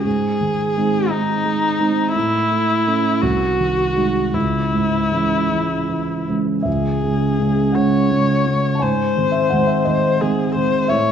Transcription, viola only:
0.04 1.12 G#4 soft
1.10 2.13 D#4 soft
2.14 3.23 E4 soft
3.22 4.35 F#4 soft
4.34 6.28 E4 soft
6.66 7.76 G#4 soft
7.75 8.84 C#5 soft
8.82 9.87 C5 soft
9.88 10.23 C5 soft
10.21 10.54 G#4 soft
10.55 10.91 C5 soft
10.89 11.12 C#5 soft

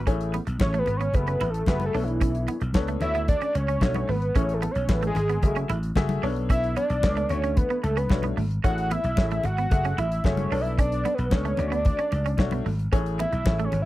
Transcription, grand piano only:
0.07 0.33 A3 loud
0.07 0.33 E4 medium
0.07 0.33 G#4 medium
0.07 0.33 C#5 loud
0.60 0.87 A3 medium
0.60 0.87 E4 medium
0.60 0.87 G#4 medium
0.60 0.87 C#5 medium
1.14 1.40 A3 medium
1.14 1.40 F#4 medium
1.14 1.41 G#4 medium
1.14 1.41 E5 medium
1.68 1.94 A3 medium
1.68 1.94 F#4 medium
1.68 1.94 G#4 medium
1.68 1.94 E5 loud
1.94 2.59 B3 medium
1.94 2.59 D4 medium
1.94 2.59 A4 medium
1.94 2.59 C#5 medium
2.75 3.01 B3 loud
2.75 3.00 D4 medium
2.75 3.01 A4 medium
2.75 3.01 C#5 loud
3.01 3.66 A3 medium
3.01 3.66 D4 medium
3.01 3.66 F#4 medium
3.01 3.66 C#5 medium
3.81 4.08 A3 medium
3.81 4.08 D4 medium
3.81 4.08 F#4 medium
3.81 4.08 C#5 loud
4.36 4.62 A3 medium
4.36 4.62 E4 medium
4.36 4.62 G#4 medium
4.36 4.62 C#5 medium
4.89 5.15 A3 medium
4.89 5.15 E4 medium
4.89 5.16 G#4 medium
4.89 5.16 C#5 medium
5.43 5.69 A3 medium
5.43 5.69 F#4 medium
5.43 5.69 G#4 medium
5.43 5.69 E5 medium
5.96 6.22 A3 loud
5.96 6.23 F#4 loud
5.96 6.23 G#4 loud
5.96 6.23 E5 loud
6.23 6.87 B3 medium
6.23 6.87 D4 medium
6.23 6.87 A4 medium
6.23 6.88 C#5 loud
7.03 7.30 B3 medium
7.03 7.29 D4 medium
7.03 7.30 A4 medium
7.03 7.29 C#5 medium
7.30 7.94 A3 medium
7.30 7.94 D4 medium
7.30 7.94 F#4 medium
7.30 7.95 C#5 medium
8.10 8.37 A3 medium
8.10 8.37 D4 medium
8.10 8.37 F#4 medium
8.10 8.37 C#5 loud
8.64 8.90 A3 medium
8.64 8.90 E4 medium
8.64 8.90 G#4 medium
8.64 8.91 C#5 medium
9.18 9.44 A3 medium
9.18 9.44 E4 medium
9.18 9.44 G#4 medium
9.18 9.44 C#5 medium
9.71 9.97 A3 medium
9.71 9.98 F#4 medium
9.71 9.98 G#4 medium
9.71 9.98 E5 medium
10.24 10.51 A3 medium
10.24 10.51 F#4 medium
10.24 10.51 G#4 medium
10.24 10.51 E5 loud
10.51 11.16 B3 medium
10.51 11.16 D4 medium
10.51 11.16 A4 medium
10.51 11.16 D5 medium
11.31 11.58 B3 medium
11.31 11.57 D4 medium
11.31 11.58 A4 medium
11.31 11.58 C#5 medium
11.58 12.23 A3 medium
11.58 12.23 D4 medium
11.58 12.23 F#4 medium
11.58 12.23 D5 medium
12.39 12.65 A3 loud
12.39 12.65 D4 loud
12.39 12.65 F#4 loud
12.39 12.66 C#5 loud
12.92 13.19 A3 loud
12.92 13.19 E4 medium
12.92 13.19 G#4 loud
12.92 13.19 C#5 loud
13.46 13.72 A3 medium
13.46 13.73 E4 medium
13.46 13.73 G#4 medium
13.46 13.73 C#5 medium

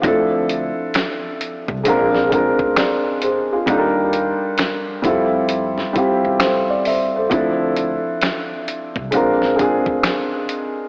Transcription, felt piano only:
0.02 1.71 F3 loud
0.02 1.71 C4 medium
0.02 1.72 D4 medium
0.02 1.73 E4 medium
0.07 1.73 A4 loud
1.84 2.27 G#3 medium
1.84 2.27 C4 medium
1.84 2.28 D4 medium
1.88 2.29 F4 medium
1.88 2.29 A#4 loud
2.29 3.56 G#3 medium
2.29 3.57 C4 medium
2.29 3.57 D4 medium
2.33 2.78 F4 medium
2.33 2.77 A#4 loud
2.78 3.21 A#4 medium
2.78 3.20 D5 medium
3.23 3.51 G#4 medium
3.23 3.50 C5 medium
3.52 3.69 F4 medium
3.52 3.95 G#4 medium
3.66 5.00 G3 loud
3.66 5.04 D4 medium
3.66 5.04 D#4 medium
3.66 5.05 F4 medium
3.71 3.78 A4 medium
3.78 5.09 A#4 medium
5.02 5.87 G3 medium
5.02 5.88 C4 medium
5.02 5.88 E4 medium
5.06 5.89 F4 medium
5.06 5.90 A4 loud
5.93 7.20 G3 medium
5.93 7.20 C4 medium
5.93 7.21 E4 medium
5.97 7.22 F4 medium
5.97 7.22 G4 loud
6.41 6.69 A4 medium
6.41 6.68 C5 medium
6.70 6.85 D5 medium
6.87 7.14 C5 medium
6.87 7.14 E5 medium
7.16 7.33 A4 medium
7.16 7.58 C5 medium
7.29 8.98 F3 medium
7.29 8.99 C4 medium
7.29 8.99 D4 medium
7.34 9.00 E4 medium
7.34 9.01 A4 loud
9.11 9.54 G#3 medium
9.11 9.55 C4 medium
9.11 9.55 D4 medium
9.11 9.56 F4 medium
9.16 9.57 A#4 medium
9.56 10.83 G#3 medium
9.56 10.84 C4 medium
9.56 10.84 D4 medium
9.60 10.85 F4 medium
9.60 10.86 G#4 loud

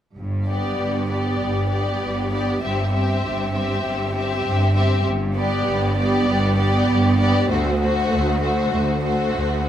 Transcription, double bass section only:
0.16 0.71 G1 soft
0.78 1.33 G1 soft
1.40 1.94 G1 soft
2.01 2.55 G1 soft
2.62 3.16 G1 soft
3.23 3.77 G1 soft
3.84 4.38 G1 soft
4.44 4.98 G1 soft
5.05 5.59 G1 medium
5.66 6.20 G1 medium
6.27 6.81 G1 medium
6.89 7.43 G1 medium
7.50 8.04 D2 medium
8.11 8.65 D2 medium
8.73 9.28 D2 soft
9.36 9.69 D2 soft

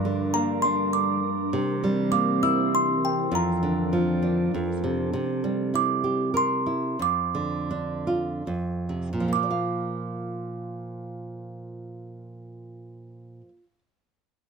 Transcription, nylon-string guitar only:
0.00 1.49 G2 medium
0.05 1.20 D3 soft
0.34 1.49 A#3 medium
0.64 1.51 D4 soft
1.53 3.27 C3 medium
1.84 2.98 G3 soft
2.12 3.27 A#3 medium
2.43 3.29 E4 soft
3.32 4.48 F2 medium
3.63 4.50 D3 medium
3.93 4.51 F3 medium
4.22 4.51 D4 soft
4.54 5.12 F2 medium
4.84 5.12 C3 soft
5.13 6.96 C3 medium
5.44 6.63 G3 soft
5.74 6.65 E4 soft
6.04 6.33 G4 soft
6.34 6.97 A#4 soft
6.66 6.98 E4 soft
6.99 8.41 F2 medium
7.35 8.43 D3 soft
7.71 8.44 D4 soft
8.07 8.45 F4 soft
8.47 9.30 F2 soft
8.89 9.12 C3 soft
9.13 13.41 A#2 soft
9.20 13.48 F3 soft
9.28 13.56 A#3 soft
9.35 13.63 F4 soft
9.43 9.50 D5 soft
9.51 13.78 F5 soft

